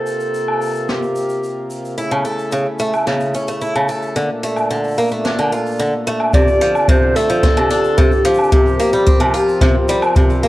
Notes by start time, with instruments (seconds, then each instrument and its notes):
Already playing: harmonium C3 A#3 F4, clarinet A4
0.07 shaker
0.20 shaker
0.34 shaker
0.48 low woodblock
0.61 shaker
0.64 shaker
0.66 shaker
0.68 shaker
0.70 shaker
0.73 shaker
0.75 shaker
0.89 clarinet G4, snare, shaker
1.02 shaker
1.16 shaker
1.29 shaker
1.43 shaker
1.70 shaker
1.85 shaker
1.98 harmonium C#3 A3 E4, steel-string acoustic guitar E4, shaker
2.11 steel-string acoustic guitar C#3, low woodblock
2.25 steel-string acoustic guitar A4, shaker
2.39 shaker
2.51 steel-string acoustic guitar C#3, shaker
2.79 steel-string acoustic guitar A3, shaker
2.93 low woodblock, shaker
3.07 steel-string acoustic guitar C#3, snare, shaker
3.20 shaker
3.34 steel-string acoustic guitar C#4, shaker
3.47 steel-string acoustic guitar A3, shaker
3.61 steel-string acoustic guitar E4, shaker
3.75 steel-string acoustic guitar C#3, low woodblock
3.88 steel-string acoustic guitar A4, shaker
4.02 shaker
4.16 harmonium A#2 D4, steel-string acoustic guitar D3, shaker
4.43 steel-string acoustic guitar A3, shaker
4.56 low woodblock, shaker
4.70 steel-string acoustic guitar D3, shaker
4.84 shaker
4.87 shaker
4.91 shaker
4.94 shaker
4.97 steel-string acoustic guitar A#3, shaker
5.01 shaker
5.04 shaker
5.08 shaker
5.11 steel-string acoustic guitar A3, shaker
5.25 steel-string acoustic guitar D4, snare, shaker
5.39 steel-string acoustic guitar D3, low woodblock, shaker
5.52 steel-string acoustic guitar F4, shaker
5.66 shaker
5.71 shaker
5.75 shaker
5.79 steel-string acoustic guitar D3, shaker
5.85 shaker
6.07 steel-string acoustic guitar A3
6.20 low woodblock
6.33 steel-string acoustic guitar C3, harmonium D3 C4 F4, clarinet D5, kick, shaker
6.48 shaker
6.61 steel-string acoustic guitar F3, closed hi-hat
6.75 low woodblock, shaker
6.88 steel-string acoustic guitar C3, clarinet C5, kick, shaker
7.16 steel-string acoustic guitar A3, clarinet A4, closed hi-hat, shaker
7.30 steel-string acoustic guitar F3, shaker
7.43 steel-string acoustic guitar C4, kick, snare, shaker
7.57 steel-string acoustic guitar C3, low woodblock
7.71 steel-string acoustic guitar D4, closed hi-hat, shaker
7.84 shaker
7.98 steel-string acoustic guitar C3, kick, shaker
8.12 shaker
8.25 steel-string acoustic guitar F3, clarinet G4, closed hi-hat, shaker
8.34 shaker
8.39 low woodblock, shaker
8.44 shaker
8.52 steel-string acoustic guitar C3, harmonium F3 A#4, kick, shaker
8.67 shaker
8.80 steel-string acoustic guitar A#3, closed hi-hat, shaker
8.93 steel-string acoustic guitar G3, shaker
9.06 steel-string acoustic guitar C4, kick, shaker
9.20 steel-string acoustic guitar C3, low woodblock
9.34 steel-string acoustic guitar F4, closed hi-hat, shaker
9.48 shaker
9.61 steel-string acoustic guitar C3, kick, snare, shaker
9.89 steel-string acoustic guitar G3, closed hi-hat, shaker
10.02 low woodblock, shaker
10.16 steel-string acoustic guitar C3, kick, shaker
10.30 shaker
10.43 steel-string acoustic guitar A#3, shaker